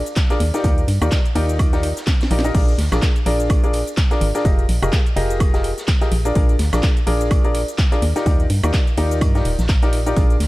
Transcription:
0.06 closed hi-hat, shaker
0.16 kick, snare, clap, closed hi-hat, ride, shaker
0.30 D4 F4 G#4 A#4 D5, snare, closed hi-hat, shaker
0.40 D#2, closed hi-hat, open hi-hat, ride
0.54 D#4 F4 G4 A#4 D5, snare, closed hi-hat, shaker
0.64 D#2 D#4 F4 G4 A#4 D5, kick, closed hi-hat, ride, shaker
0.78 closed hi-hat, shaker
0.88 G2, closed hi-hat, open hi-hat, ride
1.01 D#2 D#4 F4 G4 A#4 D5, closed hi-hat, high woodblock, shaker
1.11 kick, snare, clap, closed hi-hat, ride, shaker
1.26 closed hi-hat, shaker
1.35 D#2 D#4 F4 G4 A#4 D5, closed hi-hat, open hi-hat, ride
1.49 closed hi-hat, shaker
1.59 kick, closed hi-hat, ride, high woodblock, shaker
1.73 D#4 F4 G4 A#4 D5, snare, closed hi-hat, shaker
1.83 closed hi-hat, open hi-hat, ride
1.97 snare, closed hi-hat, shaker
2.07 kick, snare, clap, closed hi-hat, ride, shaker
2.21 snare, closed hi-hat, shaker
2.23 snare
2.31 A#1 D#4 F4 G4 A#4 D5, closed hi-hat, open hi-hat, ride
2.39 snare
2.44 D#4 F4 G4 A#4 D#5, closed hi-hat, shaker
2.54 A#1 D4 F4 G#4 A#4 D5, kick, closed hi-hat, crash, ride, shaker
2.68 closed hi-hat, shaker
2.78 D2, snare, closed hi-hat, open hi-hat, ride
2.92 A#1 D4 F4 G#4 A#4 D5, snare, closed hi-hat, high woodblock, shaker
3.02 kick, snare, clap, closed hi-hat, ride, shaker
3.16 closed hi-hat, shaker
3.26 A#1 D4 F4 G#4 A#4 D5, closed hi-hat, open hi-hat, ride
3.40 closed hi-hat, shaker
3.50 kick, closed hi-hat, ride, high woodblock, shaker
3.63 D4 F4 G#4 A#4 D5, closed hi-hat, shaker
3.73 closed hi-hat, open hi-hat, ride
3.87 closed hi-hat, shaker
3.97 kick, snare, clap, closed hi-hat, ride, shaker
4.11 D4 F4 G#4 A#4 D5, snare, closed hi-hat, shaker
4.21 G#1, closed hi-hat, open hi-hat, ride
4.35 D4 F4 G#4 A#4 D5, snare, closed hi-hat, shaker
4.45 F1 F4 G4 G#4 A#4 D#5, kick, closed hi-hat, ride, shaker
4.59 closed hi-hat, shaker
4.69 A#1, closed hi-hat, open hi-hat, ride
4.82 F1 F4 G4 G#4 A#4 D#5, closed hi-hat, high woodblock, shaker
4.92 kick, snare, clap, closed hi-hat, ride, shaker
5.06 closed hi-hat, shaker
5.16 F1 F4 G4 G#4 A#4 D#5, closed hi-hat, open hi-hat, ride
5.30 closed hi-hat, shaker
5.40 kick, closed hi-hat, ride, high woodblock, shaker
5.54 F4 G4 G#4 A#4 D#5, snare, closed hi-hat, shaker
5.64 closed hi-hat, open hi-hat, ride
5.78 snare, closed hi-hat, shaker
5.87 kick, snare, clap, closed hi-hat, ride, shaker
6.01 F4 G4 G#4 A#4 D#5, snare, closed hi-hat, shaker
6.12 A#1, closed hi-hat, open hi-hat, ride
6.25 D4 F4 G#4 A#4 D5, closed hi-hat, shaker
6.35 A#1 D4 F4 G#4 A#4 D5, kick, closed hi-hat, ride, shaker
6.49 closed hi-hat, shaker
6.59 D2, snare, closed hi-hat, open hi-hat, ride
6.73 A#1 D4 F4 G#4 A#4 D5, snare, closed hi-hat, high woodblock, shaker
6.83 kick, snare, clap, closed hi-hat, ride, shaker
6.97 closed hi-hat, shaker
7.07 A#1 D4 F4 G#4 A#4 D5, closed hi-hat, open hi-hat, ride
7.21 closed hi-hat, shaker
7.31 kick, closed hi-hat, ride, high woodblock, shaker
7.44 D4 F4 G#4 A#4 D5, closed hi-hat, shaker
7.55 closed hi-hat, open hi-hat, ride
7.68 closed hi-hat, shaker
7.78 kick, snare, clap, closed hi-hat, ride, shaker
7.92 D4 F4 G#4 A#4 D5, snare, closed hi-hat, shaker
8.02 D#2, closed hi-hat, open hi-hat, ride
8.16 D#4 F4 G4 A#4 D5, snare, closed hi-hat, shaker
8.26 D#2 D#4 F4 G4 A#4 D5, kick, closed hi-hat, ride, shaker
8.40 closed hi-hat, shaker
8.50 G2, closed hi-hat, open hi-hat, ride
8.64 D#2 D#4 F4 G4 A#4 D5, closed hi-hat, high woodblock, shaker
8.73 kick, snare, clap, closed hi-hat, ride, shaker
8.87 closed hi-hat, shaker
8.97 D#2 D#4 F4 G4 A#4 D5, closed hi-hat, open hi-hat, ride
9.11 closed hi-hat, shaker
9.21 G2, kick, closed hi-hat, ride, high woodblock, shaker
9.35 D#4 F4 G4 A#4 D5, snare, closed hi-hat, shaker
9.45 D#1, closed hi-hat, open hi-hat, ride
9.59 A#1, snare, closed hi-hat, shaker
9.69 kick, snare, clap, closed hi-hat, ride, shaker
9.83 D#4 F4 G4 A#4 D5, snare, closed hi-hat, shaker
9.93 closed hi-hat, open hi-hat, ride
10.06 D#4 F4 G4 A#4 D5, closed hi-hat, shaker
10.16 A#1 D4 G#4 A#4 D5, kick, closed hi-hat, ride, shaker
10.30 closed hi-hat, shaker
10.40 D2, snare, closed hi-hat, open hi-hat, ride

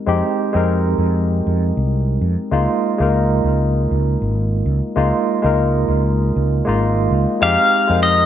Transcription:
Already playing: G#3 C4 D#4 A#4
0.06 F2 G#3 C4 D#4 G4
0.53 F2 G#3 C4 D#4 A#4
0.98 F2
1.47 F2
1.77 C2
2.21 F2
2.51 C#2 G#3 A#3 D#4 F4
2.98 C#2 G#3 A#3 D#4 A#4
3.44 C#2
3.91 C#2
4.22 G#1
4.66 C#2
4.96 C#2 G#3 A#3 D#4 F4
5.42 C#2 G#3 A#3 D#4
5.46 A#4
5.88 C#2
6.36 C#2
6.65 G#1 G#3 A#3 D#4 F4
7.11 C#2
7.41 F2 G#3 C4 D#4 G4 F5
7.88 F2 G#3 C4 D#4 A#4
8.03 D#5

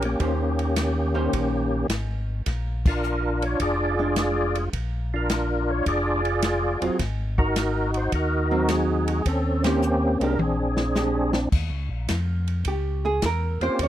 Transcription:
Already playing: A#1
0.02 A#3 C#4 G4, ride
0.19 D#2 D#3 C#4 G4 C5, kick, ride
0.59 ride
0.76 snare, hi-hat pedal, ride
1.14 D#3 C#4 G4 C5
1.33 A#1, kick, ride
1.88 G#1, snare, hi-hat pedal, ride
2.46 A#1, kick, snare, ride
2.86 D4 F4 A#4, kick, crash
3.03 hi-hat pedal
3.42 C#5, ride
3.60 F1 F4 G#4 D5, kick, ride
3.99 G#3 D4
4.16 snare, hi-hat pedal, ride
4.55 G#4, ride
4.73 A#1, kick, ride
5.14 D4 F4 A#4
5.30 snare, hi-hat pedal, ride
5.70 C#5
5.86 F1 F4 G#4 D5, kick, ride
6.25 ride
6.42 snare, hi-hat pedal, ride
6.81 F1 F#3 C4 F4 G#4, ride
6.99 G#1, kick, snare, ride
7.38 D#4 F#4 A#4, kick
7.56 snare, hi-hat pedal, ride
7.94 C5, ride
8.12 D#2 D#4 F#4 A#4, kick, ride
8.51 F#3 C4
8.68 G#4, snare, hi-hat pedal, ride
9.08 G#4, ride
9.25 D#2 C4 C#4 A4, kick, ride
9.63 D#3 A#3 C#4 G4 C5, snare, ride
9.82 hi-hat pedal
10.20 C2 G#3 D4 G4, ride
10.24 A#4
10.37 A#1 C4 D4, high tom
10.42 G#4
10.77 snare
10.95 G#3 D4 G4, snare, hi-hat pedal
11.33 snare
11.52 D#2, kick, crash
11.70 C#2
11.89 A#1
12.08 F2, kick, snare, hi-hat pedal, ride
12.47 ride
12.65 C#2 G4, kick, ride
13.05 G#4
13.22 E2 A#4, kick, snare, hi-hat pedal, ride
13.60 E2 A#3 C4 C#4 F4 G4 C5, ride
13.79 D#2, kick, ride
13.83 C#5

